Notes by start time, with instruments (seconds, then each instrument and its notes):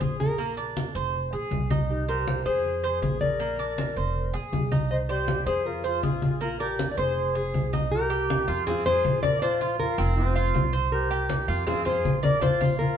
Already playing: nylon-string guitar C5
0.01 upright bass A#1, cuban tres G#4, high conga
0.20 nylon-string guitar A#4, high conga
0.38 cuban tres A#3, high conga
0.57 cuban tres D4, high conga
0.77 high conga
0.95 upright bass F1, nylon-string guitar G#4, cuban tres C5
1.14 high conga
1.33 upright bass A#1, cuban tres G#4, high conga
1.51 upright bass C2, high conga
1.70 cuban tres D#4, high conga
1.90 flute D#4, nylon-string guitar G4, high conga
2.08 flute G4, nylon-string guitar A#4, cuban tres C5, high conga
2.28 high conga
2.45 upright bass F2, flute G#4, cuban tres G#4, nylon-string guitar C5, high conga
2.65 high conga
2.84 cuban tres C5, high conga
3.02 upright bass A#1, cuban tres G#4, high conga
3.21 flute A#4, nylon-string guitar D5, high conga
3.40 cuban tres A#3, high conga
3.59 cuban tres D4, high conga
3.78 high conga
3.97 upright bass F1, cuban tres C5
4.16 high conga
4.34 upright bass A#1, cuban tres G#4, high conga
4.53 upright bass C2, high conga
4.72 cuban tres D#4, high conga
4.91 flute C5, nylon-string guitar D#5, high conga
5.09 flute G4, cuban tres C5, nylon-string guitar D5, high conga
5.28 high conga
5.46 upright bass F2, cuban tres G#4, flute G#4, nylon-string guitar C5, high conga
5.66 flute F4, nylon-string guitar A#4, high conga
5.84 flute F4, nylon-string guitar G#4, cuban tres C5, high conga
6.03 upright bass A#1, cuban tres G#4, high conga
6.22 high conga
6.41 cuban tres A#3, flute F4, nylon-string guitar A#4, high conga
6.60 cuban tres D4, flute G4, nylon-string guitar A#4, high conga
6.79 high conga
6.92 flute A#4, nylon-string guitar D5
6.97 upright bass F1, flute G#4, cuban tres C5, nylon-string guitar C5
7.17 high conga
7.35 cuban tres G#4, high conga
7.54 upright bass C2, high conga
7.73 cuban tres D#4, high conga
7.92 flute G4, nylon-string guitar A#4, high conga
8.10 cuban tres G4, high conga
8.30 high conga
8.48 upright bass F2, cuban tres F4, high conga
8.67 cuban tres C4, flute F4, nylon-string guitar G#4, high conga, low conga
8.86 cuban tres F4, flute G#4, nylon-string guitar C5, high conga, low conga
9.04 upright bass A#1, high conga
9.23 flute A#4, nylon-string guitar D5, cuban tres D5, high conga
9.42 cuban tres D4, flute F4, nylon-string guitar C5, high conga
9.61 cuban tres F4, high conga
9.79 flute F4, nylon-string guitar A#4, high conga
9.98 upright bass F1, cuban tres C4, high conga
10.17 flute C4, nylon-string guitar F4, high conga
10.36 cuban tres F4, high conga
10.54 upright bass C2, high conga
10.73 cuban tres C5, high conga
10.92 flute G4, nylon-string guitar A#4, high conga
11.11 cuban tres G4, high conga
11.30 high conga
11.48 upright bass F2, cuban tres F4, high conga
11.67 cuban tres C4, flute F4, nylon-string guitar G#4, high conga, low conga
11.85 cuban tres F4, flute G#4, nylon-string guitar C5, high conga, low conga
12.05 upright bass A#1, high conga
12.22 flute A#4, cuban tres D5, nylon-string guitar D5, high conga
12.41 cuban tres D4, flute F4, nylon-string guitar C5, high conga
12.61 cuban tres F4, high conga
12.78 flute F4, nylon-string guitar A#4, high conga